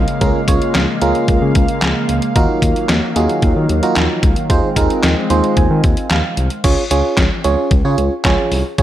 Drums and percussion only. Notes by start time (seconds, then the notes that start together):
0.08 closed hi-hat
0.21 kick, closed hi-hat
0.48 kick, closed hi-hat
0.62 closed hi-hat
0.75 snare, clap, closed hi-hat
1.01 closed hi-hat
1.15 closed hi-hat
1.28 kick, closed hi-hat
1.55 kick, closed hi-hat
1.68 closed hi-hat
1.82 snare, clap, closed hi-hat
2.09 closed hi-hat
2.22 closed hi-hat
2.36 kick, closed hi-hat
2.62 kick, closed hi-hat
2.76 closed hi-hat
2.89 snare, clap, closed hi-hat
3.16 closed hi-hat
3.29 closed hi-hat
3.42 kick, closed hi-hat
3.69 closed hi-hat
3.83 closed hi-hat
3.96 snare, clap, closed hi-hat
4.23 kick, closed hi-hat
4.36 closed hi-hat
4.50 kick, closed hi-hat
4.76 kick, closed hi-hat
4.90 closed hi-hat
5.03 snare, clap, closed hi-hat
5.30 closed hi-hat
5.44 closed hi-hat
5.57 kick, closed hi-hat
5.84 kick, closed hi-hat
5.97 closed hi-hat
6.10 snare, clap, closed hi-hat
6.37 closed hi-hat
6.50 closed hi-hat
6.64 kick, closed hi-hat, crash
6.91 closed hi-hat
7.17 kick, snare, clap, closed hi-hat
7.44 closed hi-hat
7.71 kick, closed hi-hat
7.98 closed hi-hat
8.25 kick, snare, clap, closed hi-hat
8.52 open hi-hat
8.78 kick, closed hi-hat